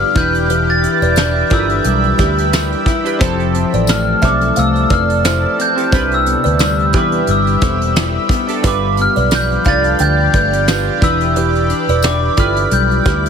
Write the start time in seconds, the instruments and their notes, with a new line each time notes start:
Already playing: clean electric guitar G2 D3 F3 B3 F4, synth keys D4 F4 A4 B4, kalimba G4 B4, ambient pad G4 F5 B5 D6, glockenspiel F6
0.14 fingered electric bass E1, clean electric guitar E3, synth keys D4 E4 G4 B4, ambient pad E5 B5, glockenspiel G6, kick, closed hi-hat
0.35 closed hi-hat
0.49 clean electric guitar E3, kalimba G4 B4, closed hi-hat
0.70 glockenspiel A6
0.83 clean electric guitar E4, closed hi-hat
1.02 fingered electric bass E1, kalimba B4 D5, closed hi-hat
1.16 clean electric guitar D4, glockenspiel G6, snare, closed hi-hat, tambourine
1.50 fingered electric bass G1, synth keys D4 E4 G4 A#4, kalimba F4 A4, clean electric guitar B4, glockenspiel E6, kick, closed hi-hat
1.59 synth keys B4
1.69 closed hi-hat
1.84 fingered electric bass B1, clean electric guitar G3, glockenspiel E6, closed hi-hat
2.04 closed hi-hat
2.18 fingered electric bass D2, clean electric guitar E4, kalimba G4 B4, kick, closed hi-hat
2.38 closed hi-hat
2.53 clean electric guitar B4, snare, closed hi-hat, tambourine
2.72 closed hi-hat
2.86 clean electric guitar E4, kick, closed hi-hat
3.04 synth keys D4 E4 G4 B4, closed hi-hat
3.19 fingered electric bass F1, clean electric guitar F3, synth keys C4 E4 G4 A4, ambient pad A4 A5, kalimba A4 C5, kick, closed hi-hat
3.40 closed hi-hat
3.54 clean electric guitar C4, closed hi-hat
3.73 fingered electric bass A1, kalimba B4 D5, closed hi-hat
3.87 clean electric guitar A3, glockenspiel F6, snare, closed hi-hat, tambourine
4.21 fingered electric bass B1, synth keys E3 C4 G4 A4, kalimba C5 E5, glockenspiel D6, kick, closed hi-hat
4.41 closed hi-hat
4.56 fingered electric bass C2, clean electric guitar A3, kalimba C5 F5, glockenspiel E6, closed hi-hat
4.75 closed hi-hat
4.90 fingered electric bass F1, clean electric guitar C4, kalimba B4 D5, glockenspiel F6, kick, closed hi-hat
5.10 closed hi-hat
5.24 clean electric guitar E4, kalimba A4 C5, glockenspiel F6, snare, closed hi-hat, tambourine
5.59 clean electric guitar C4, glockenspiel G6, closed hi-hat
5.75 synth keys C4 E4 G4 A4, closed hi-hat
5.91 fingered electric bass C2, clean electric guitar C3, synth keys D4 E4 G4 B4, ambient pad G4 E5 B5, kalimba G4 C5, kick, closed hi-hat
6.11 glockenspiel E6, closed hi-hat
6.26 clean electric guitar B3, closed hi-hat
6.44 fingered electric bass D2, kalimba B4 D5, closed hi-hat
6.59 clean electric guitar G3, snare, closed hi-hat, tambourine
6.64 glockenspiel E6
6.79 closed hi-hat
6.93 fingered electric bass E2, synth keys D4 E4 G4 B4, clean electric guitar E4, kalimba G4 B4, kick, closed hi-hat
6.97 glockenspiel D6
7.12 closed hi-hat
7.27 fingered electric bass G1, clean electric guitar G3, closed hi-hat
7.31 glockenspiel E6
7.47 closed hi-hat
7.61 fingered electric bass E1, clean electric guitar B3, kalimba A4 C5, kick, closed hi-hat
7.81 closed hi-hat
7.96 clean electric guitar E4, snare, closed hi-hat, tambourine
8.29 clean electric guitar B3, kick, closed hi-hat
8.47 synth keys D4 E4 G4 A4, closed hi-hat
8.62 fingered electric bass G1, clean electric guitar G2, synth keys D4 F4 A4 B4, kalimba G4 B4, ambient pad G4 F5 D6, kick, closed hi-hat
8.67 glockenspiel D6
8.97 clean electric guitar B3, closed hi-hat
9.02 glockenspiel F6
9.16 fingered electric bass B1, kalimba B4 D5, closed hi-hat
9.31 clean electric guitar F3, glockenspiel G6, snare, closed hi-hat, tambourine
9.51 closed hi-hat
9.64 fingered electric bass C2, synth keys D4 F4 A4 B4, clean electric guitar F4, kalimba D5 F5, glockenspiel A6, kick, closed hi-hat
9.84 closed hi-hat
9.99 fingered electric bass D2, clean electric guitar D3, kalimba D5 G5, glockenspiel G6, closed hi-hat
10.33 fingered electric bass G1, clean electric guitar A3, kalimba B4 D5, glockenspiel G6, kick, closed hi-hat
10.53 clean electric guitar B3, closed hi-hat
10.67 clean electric guitar F4, kalimba G4 B4, snare, closed hi-hat, tambourine
11.01 fingered electric bass E1, clean electric guitar E3, synth keys D4 E4 G4 B4, ambient pad D5 B5, glockenspiel E6, kick, closed hi-hat
11.21 closed hi-hat
11.36 clean electric guitar E3, kalimba G4 B4, closed hi-hat
11.55 closed hi-hat
11.70 clean electric guitar D4, closed hi-hat
11.88 fingered electric bass E1, clean electric guitar E4, kalimba B4 D5, closed hi-hat
12.03 clean electric guitar D4, glockenspiel D6, snare, closed hi-hat, tambourine
12.37 fingered electric bass G1, synth keys D4 E4 G4 B4, kalimba F4 A4, clean electric guitar B4, glockenspiel F6, kick, closed hi-hat
12.56 closed hi-hat
12.71 fingered electric bass B1, clean electric guitar G3, glockenspiel G6, closed hi-hat
12.91 closed hi-hat
13.05 fingered electric bass D2, clean electric guitar E4, kalimba G4 B4, kick, closed hi-hat
13.26 closed hi-hat